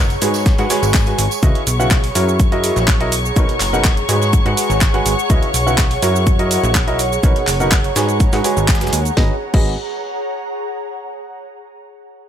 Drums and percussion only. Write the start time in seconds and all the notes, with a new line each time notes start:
0.10 closed hi-hat, tambourine
0.22 open hi-hat, shaker
0.34 snare, tambourine, shaker
0.46 kick, snare, closed hi-hat, shaker
0.58 closed hi-hat, tambourine
0.70 snare, open hi-hat, shaker
0.83 closed hi-hat, tambourine, shaker
0.94 kick, snare, clap, closed hi-hat, tambourine, shaker
1.06 closed hi-hat, tambourine
1.19 open hi-hat, shaker
1.31 closed hi-hat, tambourine, shaker
1.43 kick, closed hi-hat, shaker
1.55 closed hi-hat
1.67 open hi-hat, shaker
1.80 shaker
1.91 kick, snare, clap, closed hi-hat, shaker
2.04 open hi-hat
2.15 open hi-hat, shaker
2.29 shaker
2.40 kick, closed hi-hat, shaker
2.52 closed hi-hat
2.64 open hi-hat, shaker
2.76 snare, closed hi-hat, shaker
2.87 kick, snare, clap, closed hi-hat, shaker
3.00 closed hi-hat
3.12 open hi-hat, shaker
3.25 shaker
3.36 kick, closed hi-hat, shaker
3.49 closed hi-hat
3.60 clap, open hi-hat, shaker
3.74 shaker
3.84 kick, snare, clap, closed hi-hat, shaker
3.97 closed hi-hat
4.09 open hi-hat, shaker
4.22 snare, shaker
4.33 kick, closed hi-hat, shaker
4.46 closed hi-hat
4.57 open hi-hat, shaker
4.70 closed hi-hat, shaker
4.81 kick, snare, clap, closed hi-hat, shaker
4.94 closed hi-hat
5.06 open hi-hat, shaker
5.19 shaker
5.30 kick, closed hi-hat, shaker
5.42 closed hi-hat
5.54 open hi-hat, shaker
5.67 shaker
5.78 kick, snare, clap, closed hi-hat, shaker
5.91 open hi-hat
6.02 open hi-hat, shaker
6.16 shaker
6.27 kick, closed hi-hat, shaker
6.39 closed hi-hat
6.51 open hi-hat, shaker
6.63 closed hi-hat, shaker
6.75 kick, snare, clap, closed hi-hat, shaker
6.88 closed hi-hat
6.99 open hi-hat, shaker
7.13 shaker
7.23 kick, closed hi-hat, shaker
7.36 closed hi-hat
7.47 clap, open hi-hat, shaker
7.60 closed hi-hat, shaker
7.71 kick, snare, clap, closed hi-hat, shaker
7.84 closed hi-hat
7.96 snare, open hi-hat, shaker
8.09 closed hi-hat, shaker
8.20 kick, closed hi-hat, shaker
8.33 snare, open hi-hat, shaker
8.44 open hi-hat, shaker
8.57 closed hi-hat, shaker
8.68 kick, snare, clap, closed hi-hat, shaker
8.75 snare, shaker
8.81 snare, closed hi-hat, shaker
8.87 snare, shaker
8.93 open hi-hat, shaker
9.05 closed hi-hat, shaker
9.17 kick, snare
9.54 kick, crash